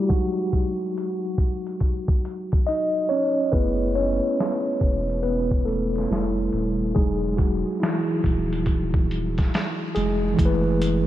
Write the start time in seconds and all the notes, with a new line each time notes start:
Already playing: G3 A3 E4 F#4 G4
0.09 F#3 G#3 D#4 F#4, kick, closed hi-hat
0.53 kick, closed hi-hat
0.98 closed hi-hat
1.38 kick, closed hi-hat
1.67 closed hi-hat
1.80 kick, closed hi-hat
2.08 kick
2.25 closed hi-hat
2.52 kick, closed hi-hat
2.67 D#4 D#5, closed hi-hat
3.09 C#4 C#5, closed hi-hat
3.52 F#1 A3 B3 E4 G#4 B4, kick, closed hi-hat
3.95 C#4 C#5, closed hi-hat
4.40 snare, closed hi-hat
4.81 E1, kick, closed hi-hat
5.10 closed hi-hat
5.23 B3 B4, closed hi-hat
5.51 kick
5.65 A3 A4, closed hi-hat
5.96 snare, closed hi-hat
6.10 F1 G3 A3 E4, snare, closed hi-hat
6.53 D#1, closed hi-hat
6.95 E1 F#3 G#3 D#4 G#4, kick, closed hi-hat
7.37 F#3 F#4, kick, closed hi-hat
7.80 E3 E4, snare, closed hi-hat
8.24 D#1, kick, closed hi-hat
8.53 closed hi-hat
8.66 kick, closed hi-hat
8.94 kick
9.11 closed hi-hat
9.38 kick, snare, closed hi-hat
9.54 snare, closed hi-hat
9.95 F1 G#3 G#4, closed hi-hat
10.34 E3 E4
10.39 F#1 A3, kick, closed hi-hat
10.46 B4
10.82 closed hi-hat